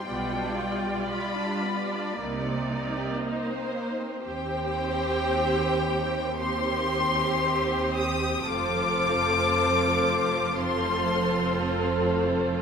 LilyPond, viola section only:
\new Staff \with { instrumentName = "Viola section" } { \time 4/4 \key c \dorian \tempo 4 = 57 <g f'>2 <bes ees'>2 | <c' g'>2 <c' g'>2 | <c' f'>2 <c' f'>2 | }